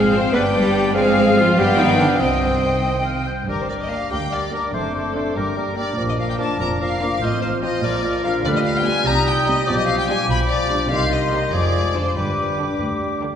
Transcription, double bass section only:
Already playing: G#1
0.34 G1
0.95 G#1
1.57 G1
2.20 C2
3.48 G1
4.11 D2
4.73 F#1
5.36 G1
5.98 A#1
6.59 F1
7.22 A1
7.82 A#1
8.44 D2
9.06 C2
9.66 B1
10.29 B1
10.90 C2
11.53 F1
12.16 G1
12.80 D2

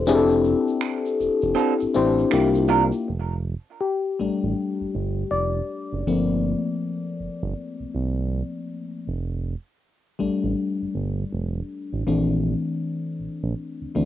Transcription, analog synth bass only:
0.07 F1
1.20 F1
1.43 F1
1.81 A1
1.96 A1
2.33 C2
3.08 F1
4.20 A1
4.43 A1
4.81 G1
4.95 G1
5.31 F1
5.93 F#1
6.06 G1
7.20 G1
7.43 G1
7.80 C2
7.95 C2
9.08 F1
10.21 A1
10.44 A1
10.81 G1
10.95 G1
11.33 F1
11.93 A1
12.07 A#1
13.20 A#1
13.43 A#1
13.81 D2
13.96 D2

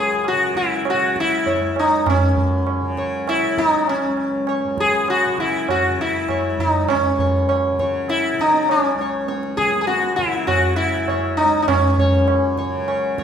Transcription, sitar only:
0.00 G#4
0.28 F#4
0.57 E4
0.90 F#4
1.20 E4
1.47 C#5
1.79 D#4
2.10 C#4
2.98 C#5
3.29 E4
3.58 D#4
3.89 C#4
4.49 C#5
4.80 G#4
5.10 F#4
5.40 E4
5.70 F#4
6.01 E4
6.30 C#5
6.60 D#4
6.90 C#4
7.20 C#5
7.49 C#5
7.80 C#5
8.10 E4
8.41 D#4
8.71 C#4
9.01 C#5
9.28 C#5
9.57 G#4
9.81 G#4
9.87 F#4
10.16 E4
10.47 F#4
10.76 E4
11.09 C#5
11.37 D#4
11.62 D#4
11.68 C#4
11.99 C#5
12.58 C#5
12.88 C#5
13.19 C#5

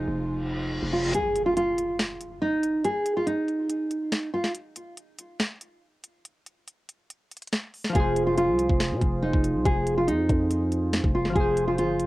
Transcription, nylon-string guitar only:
Already playing: D#4
0.93 F4
1.15 G#4
1.46 F4
1.57 F4
2.42 D#4
2.85 G#4
3.17 F4
3.27 D#4
4.34 F4
7.95 G#4
8.27 F4
8.38 F4
9.22 D#4
9.65 G#4
9.97 F4
10.07 D#4
11.15 F4
11.35 G#4
11.68 F4
11.79 F4

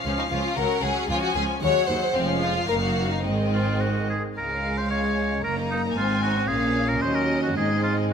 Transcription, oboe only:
3.53 F4
3.81 F#4
4.10 G#4
4.37 A#4
4.77 C5
4.90 C#5
5.44 A#4
5.71 D#4
5.97 F4
6.23 F#4
6.48 G#4
6.88 A#4
7.02 C5
7.15 A#4
7.43 F#4
7.57 G#4
7.83 F4

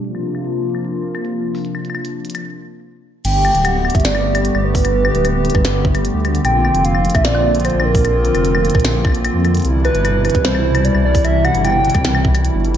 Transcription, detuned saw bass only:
3.25 G1
3.55 D1
3.95 G1
4.55 G1
5.15 D1
5.55 G1
5.85 G1
6.15 D2
6.45 A#1
6.75 F1
7.15 A#1
7.75 A#1
8.35 F1
8.75 A#1
9.05 A#1
9.35 F2
9.65 C2
9.95 G1
10.35 C2
10.95 C2
11.55 G1
11.95 C2
12.25 C2
12.55 G1

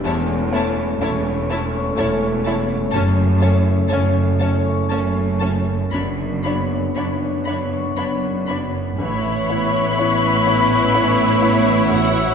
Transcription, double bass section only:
0.06 E1
1.02 E1
1.97 E1
2.93 F#1
3.90 F#1
4.90 F#1
5.92 F#1
6.97 F#1
7.97 F#1
8.99 A1

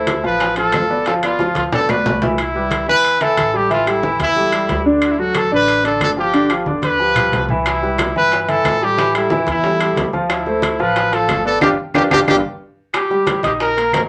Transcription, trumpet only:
Already playing: E4
0.26 B4
0.58 A4
1.07 A4
1.24 F4
1.57 F4
1.74 A4
1.90 B4
2.40 E4
2.89 B4
3.22 A4
3.57 G4
3.73 F4
3.90 E4
4.23 E4
5.05 F#4
5.11 E4
5.19 F#4
5.37 A4
5.54 B4
5.86 A4
6.03 A4
6.20 G4
6.85 B4
7.68 E4
8.17 B4
8.42 B4
8.49 A4
8.84 G4
9.16 E4
9.50 E4
10.32 E4
10.81 B4
11.14 A4
11.47 A4
11.62 G4
11.95 G4
12.12 G4
12.29 G4
12.95 G4
13.45 G4
13.61 A#4
13.95 A#4

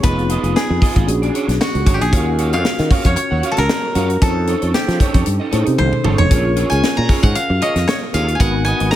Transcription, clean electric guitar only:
0.03 F4 G#4 D#5
0.18 muted clean electric guitar stroke
0.29 F4 G#4 D#5
0.43 F4 G#4 D#5
0.55 muted clean electric guitar stroke
0.69 muted clean electric guitar stroke
0.81 F4 G#4 D#5
0.96 F4 G#4 D#5
1.08 muted clean electric guitar stroke
1.22 D4 G#4 D5
1.34 D4 G#4 C#5
1.48 muted clean electric guitar stroke
1.74 muted clean electric guitar stroke
1.86 D4 G#4 C#5
2.00 muted clean electric guitar stroke
2.12 F#4 C#5 F5
2.26 muted clean electric guitar stroke
2.38 F#4 C#5 F5
2.53 F#4 C#5 F5
2.65 muted clean electric guitar stroke
2.79 muted clean electric guitar stroke
2.90 F#4 C#5 F5
3.05 F#4 C#5 F5
3.17 muted clean electric guitar stroke
3.31 F#4 C#5 F#5
3.43 F#4 C#5 F5
3.58 muted clean electric guitar stroke
3.83 muted clean electric guitar stroke
3.95 F#4 C#5 F5
4.10 muted clean electric guitar stroke
4.22 D#4 A4 C#5
4.35 muted clean electric guitar stroke
4.47 D#4 A4 C#5
4.61 D#4 A4 C#5
4.74 muted clean electric guitar stroke
4.88 muted clean electric guitar stroke
5.00 D#4 A4 C#5
5.14 D#4 A4 C#5
5.26 muted clean electric guitar stroke
5.40 D#4 A4 D#5
5.51 D#4 A4 C#5
5.66 muted clean electric guitar stroke
5.92 muted clean electric guitar stroke
6.04 D#4 A4 C#5
6.19 muted clean electric guitar stroke
6.30 F4 G#4 C#5
6.45 muted clean electric guitar stroke
6.56 F4 G#4 C#5
6.71 F4 G#4 C#5
6.83 muted clean electric guitar stroke
6.97 muted clean electric guitar stroke
7.10 F4 G#4 C#5
7.24 F4 G#4 C#5
7.50 muted clean electric guitar stroke
7.61 F4 G#4 C#5
7.76 muted clean electric guitar stroke
8.02 muted clean electric guitar stroke
8.14 F4 G#4 C#5
8.28 muted clean electric guitar stroke
8.40 F#4 B4 D#5
8.55 muted clean electric guitar stroke
8.66 F#4 B4 D#5
8.80 F#4 B4 D#5
8.92 muted clean electric guitar stroke

